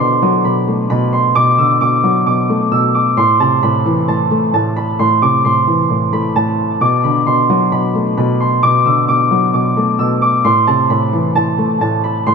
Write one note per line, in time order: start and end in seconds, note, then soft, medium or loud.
0.00 0.44 B2 medium
0.00 0.90 D3 medium
0.00 1.28 A4 medium
0.00 0.51 C6 medium
0.00 0.76 D6 loud
0.22 1.36 F#3 loud
0.44 0.89 B2 medium
0.44 0.90 B5 medium
0.68 1.81 A3 medium
0.90 1.34 B2 loud
0.90 1.19 B5 medium
1.13 2.43 C6 medium
1.35 1.80 B2 loud
1.35 1.81 D6 loud
1.58 2.72 D3 medium
1.58 2.71 E6 medium
1.81 2.25 B2 medium
1.81 2.26 D6 medium
2.04 3.17 F#3 loud
2.26 2.70 B2 medium
2.26 2.94 D6 medium
2.49 3.18 A3 medium
2.72 3.17 B2 medium
2.72 3.85 E6 medium
2.95 4.16 D6 medium
3.17 3.61 A2 medium
3.17 3.69 C6 loud
3.40 4.54 C3 medium
3.40 4.08 A5 medium
3.63 4.06 A2 medium
3.63 4.76 B5 medium
3.86 4.99 E3 loud
4.08 4.52 A2 medium
4.08 4.53 A5 medium
4.31 5.45 A3 medium
4.54 4.98 A2 medium
4.54 5.99 A5 medium
4.76 5.05 B5 medium
4.99 5.43 A2 medium
4.99 5.44 C6 medium
5.22 6.36 C3 medium
5.22 6.44 D6 medium
5.45 5.89 A2 medium
5.45 6.19 C6 medium
5.67 6.81 E3 medium
5.90 6.34 A2 medium
6.13 6.81 A3 medium
6.13 7.03 B5 medium
6.36 6.81 A2 medium
6.36 7.81 A5 medium
6.81 7.25 B2 loud
6.81 8.03 D6 loud
7.04 8.18 D3 medium
7.04 7.32 B5 medium
7.26 7.70 B2 medium
7.26 7.78 C6 medium
7.50 8.63 F#3 loud
7.72 8.16 B2 medium
7.72 8.17 B5 medium
7.95 9.08 A3 medium
8.17 8.62 B2 loud
8.17 8.46 B5 medium
8.40 9.71 C6 medium
8.63 9.07 B2 loud
8.63 9.08 D6 loud
8.86 9.99 D3 medium
8.86 9.99 E6 medium
9.08 9.52 B2 medium
9.08 9.53 D6 medium
9.31 10.45 F#3 medium
9.54 9.97 B2 medium
9.54 10.21 D6 medium
9.77 10.45 A3 medium
9.99 10.45 B2 medium
9.99 11.13 E6 medium
10.22 11.44 D6 medium
10.45 10.89 A2 medium
10.45 10.96 C6 loud
10.67 11.81 C3 medium
10.67 11.35 A5 medium
10.90 11.34 A2 medium
10.90 12.03 B5 medium
11.13 12.27 E3 loud
11.35 11.79 A2 medium
11.35 11.81 A5 medium
11.58 12.35 A3 medium
11.81 12.25 A2 medium
11.81 12.35 A5 medium
12.04 12.33 B5 medium
12.27 12.35 A2 loud
12.27 12.35 C6 loud